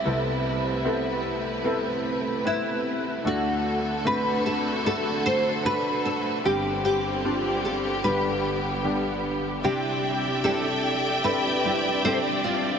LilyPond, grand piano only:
<<
  \new Staff \with { instrumentName = "Grand piano" } { \time 4/4 \key c \major \tempo 4 = 75 <b c' e' a'>4 <b c' e' a'>4 <b c' e' a'>4 <b c' e' b'>4 | <a d' fis' a'>4 <a c' d' fis'>4 <a d' fis' a'>4 <a d' fis' a'>4 | <g c' d' g'>4 <g c' d' f'>4 <g b d' g'>4 <g b d' g'>4 | <c' d' e' g'>4 <c' d' e' g'>4 <c' d' e' a'>8 <c' d' e' g'>8 <c' d' a' e''>4 | }
  \new Staff \with { instrumentName = "Grand piano" } { \clef bass \time 4/4 \key c \major <c, c>1 | <d, d>1 | <g,, g,>2 <g,, g,>2 | c4. r2 r8 | }
>>